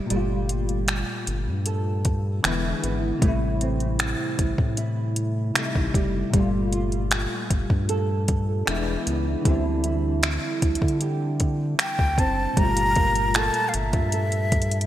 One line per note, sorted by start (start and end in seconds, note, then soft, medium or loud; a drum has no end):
0.00 0.18 C4 medium
0.00 0.18 E4 medium
0.06 2.38 A#2 medium
0.06 2.40 G3 medium
0.06 2.44 G3 medium
0.10 1.04 G1 loud
0.10 2.41 A3 medium
0.10 closed hi-hat medium
0.16 2.43 F4 medium
0.49 2.52 F4 medium
0.49 closed hi-hat medium
0.69 closed hi-hat soft
0.88 finger snap loud
0.88 closed hi-hat medium
1.27 1.49 G1 medium
1.27 closed hi-hat medium
1.47 2.40 G2 medium
1.66 2.52 A4 medium
1.66 closed hi-hat medium
2.05 kick medium
2.05 closed hi-hat medium
2.43 2.74 E1 loud
2.43 3.21 D3 medium
2.43 5.94 E3 medium
2.43 3.22 G#3 medium
2.43 3.23 B3 medium
2.43 finger snap loud
2.43 closed hi-hat medium
2.47 3.24 E4 medium
2.83 3.13 G#1 medium
2.83 3.30 B3 medium
2.83 closed hi-hat medium
3.18 5.50 C3 medium
3.18 5.51 G3 medium
3.18 kick loud
3.22 4.15 A1 loud
3.22 6.34 A2 medium
3.22 5.53 A3 medium
3.22 closed hi-hat medium
3.28 5.55 E4 medium
3.61 6.41 C4 medium
3.61 closed hi-hat medium
3.80 closed hi-hat soft
3.99 finger snap loud
3.99 closed hi-hat medium
4.39 4.54 A1 medium
4.39 kick medium
4.39 closed hi-hat medium
4.58 5.52 A2 loud
4.58 kick medium
4.77 6.41 E4 medium
4.77 closed hi-hat medium
5.16 closed hi-hat medium
5.54 6.33 C3 medium
5.54 6.32 G3 medium
5.54 6.35 A3 medium
5.54 finger snap loud
5.54 closed hi-hat medium
5.59 5.64 D#4 medium
5.66 6.39 E4 medium
5.75 5.90 A1 medium
5.75 kick medium
5.94 6.24 F#1 medium
5.94 6.33 G3 medium
5.94 kick medium
5.94 closed hi-hat medium
6.30 7.27 G1 loud
6.30 8.62 A#2 medium
6.30 8.63 G3 medium
6.30 8.67 G3 medium
6.30 kick loud
6.30 closed hi-hat medium
6.36 8.65 A3 medium
6.36 8.66 F4 medium
6.73 8.75 F4 medium
6.73 closed hi-hat medium
6.92 closed hi-hat soft
7.11 finger snap loud
7.11 closed hi-hat medium
7.50 7.65 G1 medium
7.50 kick medium
7.50 closed hi-hat medium
7.70 8.63 G2 loud
7.70 kick medium
7.89 8.75 A4 medium
7.89 closed hi-hat medium
8.28 kick medium
8.28 closed hi-hat medium
8.66 8.97 E1 loud
8.66 12.17 E3 medium
8.66 9.45 G#3 medium
8.66 9.46 B3 medium
8.66 9.44 D4 medium
8.66 finger snap loud
8.66 closed hi-hat medium
8.71 9.47 E4 medium
9.06 9.36 C#2 loud
9.06 9.53 B3 medium
9.06 closed hi-hat medium
9.41 12.51 D3 medium
9.41 12.52 G3 medium
9.45 10.39 D2 loud
9.45 12.95 D3 medium
9.45 12.54 C4 medium
9.45 kick loud
9.45 closed hi-hat medium
9.51 12.56 E4 medium
9.84 12.65 E4 medium
9.84 closed hi-hat medium
10.23 finger snap loud
10.23 closed hi-hat medium
10.62 10.77 D2 medium
10.62 kick medium
10.62 closed hi-hat medium
10.75 closed hi-hat medium
10.82 11.75 D3 loud
10.82 kick medium
10.88 closed hi-hat soft
11.01 13.36 G4 medium
11.01 closed hi-hat medium
11.40 kick medium
11.40 closed hi-hat medium
11.79 12.21 G5 medium
11.79 finger snap loud
11.79 closed hi-hat medium
11.99 12.20 D2 medium
11.99 kick medium
12.18 12.48 F#1 medium
12.18 12.65 C4 medium
12.18 12.60 A5 loud
12.18 kick loud
12.18 closed hi-hat medium
12.53 14.85 A#2 medium
12.53 14.86 G3 medium
12.53 kick loud
12.53 closed hi-hat medium
12.57 13.51 G1 loud
12.57 14.87 G3 medium
12.57 14.87 A3 medium
12.57 13.37 A#5 loud
12.63 14.87 F4 medium
12.77 closed hi-hat medium
12.95 13.34 A#3 medium
12.95 kick medium
12.95 closed hi-hat soft
13.15 closed hi-hat soft
13.34 14.87 A#3 medium
13.34 14.87 F4 medium
13.34 14.12 A4 medium
13.34 13.70 A5 loud
13.34 finger snap loud
13.34 closed hi-hat medium
13.54 closed hi-hat soft
13.68 13.76 F5 medium
13.74 13.95 G1 medium
13.74 14.87 E5 medium
13.74 closed hi-hat medium
13.93 14.87 G2 loud
13.93 kick medium
13.93 closed hi-hat soft
14.12 14.87 A4 medium
14.12 closed hi-hat medium
14.32 closed hi-hat soft
14.52 kick medium
14.52 closed hi-hat medium
14.62 closed hi-hat medium
14.71 closed hi-hat medium
14.81 closed hi-hat medium